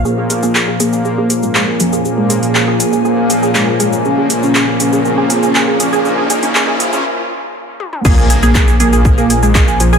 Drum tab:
CC |----------------|----------------|----------------|----------------|
HH |--o---o---o---o-|--oo--o---o---o-|--o---o---o---o-|--oo--o---------|
SH |x-xxx-xxx-xxx-xx|x-xxx-xxx-xxx-xx|x-xxx-xxx-xxx-xx|x-xxx-xx--------|
CP |----x-------x---|----x-------x---|----x-------x---|----x-----------|
T1 |----------------|----------------|----------------|--------------o-|
T2 |----------------|----------------|----------------|---------------o|
BD |----------------|----------------|----------------|----------------|

CC |x---------------|
HH |--o---o---o---o-|
SH |xxxxxxxxxxxxxxxx|
CP |----x-------x---|
T1 |----------------|
T2 |----------------|
BD |o---o---o---o---|